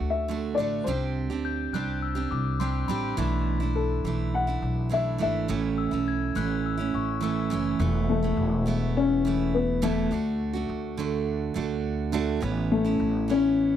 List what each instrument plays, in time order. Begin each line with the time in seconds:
Already playing: steel-string acoustic guitar A3 D4 F#4, upright piano F#5
0.00 upright bass D2
0.10 upright piano E5
0.28 steel-string acoustic guitar D3 A3 D4 F#4
0.55 upright bass A1, steel-string acoustic guitar D3, upright piano D5
0.59 steel-string acoustic guitar A3 D4 F#4
0.84 upright bass C2, steel-string acoustic guitar C3 G3 C4 D4, upright piano C5
0.89 steel-string acoustic guitar G4
1.30 upright bass D2, steel-string acoustic guitar C4 D4 G4
1.45 glockenspiel G6
1.73 upright bass C2, steel-string acoustic guitar G3 C4 D4 G4, glockenspiel F#6
2.02 glockenspiel E6
2.15 steel-string acoustic guitar C4 D4 G4
2.31 upright bass C2, glockenspiel D6
2.60 steel-string acoustic guitar G3 C4 D4 G4, glockenspiel C6
2.88 upright bass A1, steel-string acoustic guitar G3 C4 D4 G4, glockenspiel B5
3.17 upright bass B1, steel-string acoustic guitar B2 E3 A3 D4 E4
3.60 steel-string acoustic guitar A3 D4 E4
3.76 upright piano A4
4.04 upright bass B1, steel-string acoustic guitar E3 A3 D4 E4
4.34 upright piano F#5
4.47 steel-string acoustic guitar A3 D4 E4
4.62 upright bass B1
4.89 steel-string acoustic guitar E3 A3 D4 E4, upright piano E5
5.18 upright bass G#1, steel-string acoustic guitar E3 A3 D4 E4, upright piano E5
5.48 upright bass A1, steel-string acoustic guitar A2 E3 A3 C#4 E4
5.78 glockenspiel E6
5.91 upright bass B1, steel-string acoustic guitar A3 C#4 E4
6.08 glockenspiel G#6
6.35 upright bass A1, steel-string acoustic guitar E3 A3 C#4 E4, glockenspiel F#6
6.66 glockenspiel E6
6.77 steel-string acoustic guitar A3 C#4 E4
6.94 upright bass A1, glockenspiel C#6
7.21 steel-string acoustic guitar E3 A3 C#4 E4, glockenspiel E6
7.50 upright bass F#1, steel-string acoustic guitar E3 A3 C#4 E4
7.79 upright bass E1, steel-string acoustic guitar E3 A3 B3 E4
8.10 upright piano A3
8.23 steel-string acoustic guitar E3 A3 B3 E4
8.37 upright bass E1
8.66 steel-string acoustic guitar E3 A3 B3 E4
8.97 upright piano C#4
9.25 steel-string acoustic guitar E3 A3 B3 E4
9.54 upright piano B3
9.82 steel-string acoustic guitar E2 B2 E3 A3 B3 E4, upright piano A3
10.11 upright bass D2, steel-string acoustic guitar D3 A3 D4 F#4
10.53 steel-string acoustic guitar A3 D4 F#4
10.69 upright bass D2
10.97 steel-string acoustic guitar D3 A3 D4 F#4
11.54 upright bass D2, steel-string acoustic guitar D3 A3 D4 F#4
12.12 steel-string acoustic guitar D3 A3 D4 F#4
12.41 upright bass A1, steel-string acoustic guitar E3 B3 C#4 E4
12.72 upright piano A3
12.85 steel-string acoustic guitar B3 C#4 E4
13.00 upright bass A1
13.28 steel-string acoustic guitar E3 B3 C#4 E4, upright piano C#4